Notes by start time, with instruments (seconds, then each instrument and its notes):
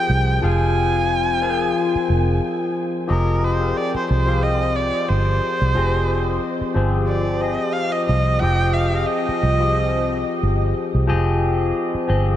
Already playing: tine electric piano F3 C4 F4 G4 G#4 A#4 D#5, erhu G5
0.10 fingered electric bass C2
0.42 fingered electric bass F1, tine electric piano F3 C4 F4 G#4 F5
0.46 erhu G#5
1.41 tine electric piano F3 C4 F4 G#4 A#4
1.50 tine electric piano C5
1.96 muted fingered electric bass stroke
2.10 fingered electric bass F1
3.07 fingered electric bass F1, tine electric piano F3 C4 G4 G#4 D#5, erhu A#4
3.44 erhu C5
3.60 tine electric piano F3 C4 G4 G#4 A#4
3.77 erhu D5
3.95 erhu C5, muted fingered electric bass stroke
4.10 fingered electric bass C2, erhu C5
4.26 tine electric piano F3 C4 G4 G#4 F5
4.43 erhu D#5
4.75 erhu D5
5.08 fingered electric bass G1, erhu C5
5.62 fingered electric bass C2
5.75 fingered electric bass F1, tine electric piano F3 C4 G4 G#4 D#5
6.61 muted fingered electric bass stroke
6.74 fingered electric bass G1, tine electric piano F3 C4 G4 G#4 C5
7.08 erhu D5
7.41 tine electric piano F3 C4 G4 G#4 D#5, erhu D#5
7.73 erhu F5
7.92 erhu D#5
8.06 fingered electric bass C2, erhu D#5
8.39 fingered electric bass F1, tine electric piano F3 C4 G4, erhu G5
8.43 tine electric piano G#4 D#5
8.73 erhu F5
8.92 tine electric piano F3 C4 G4 G#4 D#5
9.06 erhu D#5
9.29 muted fingered electric bass stroke
9.43 fingered electric bass C2
9.59 tine electric piano F3 C4 G4 G#4 D#5
10.43 fingered electric bass G1
10.95 fingered electric bass C2
11.07 fingered electric bass F1, tine electric piano F3 C4 G4 G#4 D#5
11.95 muted fingered electric bass stroke
12.08 fingered electric bass G1, tine electric piano F3 C4 G4 G#4 D#5